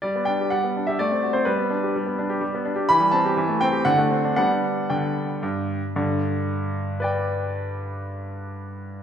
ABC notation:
X:1
M:3/4
L:1/16
Q:1/4=116
K:G
V:1 name="Grand piano"
d2 g2 f3 e d3 c | B8- B2 z2 | b2 a4 g2 f4 | f4 g6 z2 |
z8 [Bdg]4- | [Bdg]12 |]
V:2 name="Grand piano"
G, B, D G G, B, D G A, C F C | G, B, D G G, B, D G G, B, D G | E, G, C G E, A, C G D, A, C D | [G,B,D]4 D,4 G,,4 |
[G,,D,]12- | [G,,D,]12 |]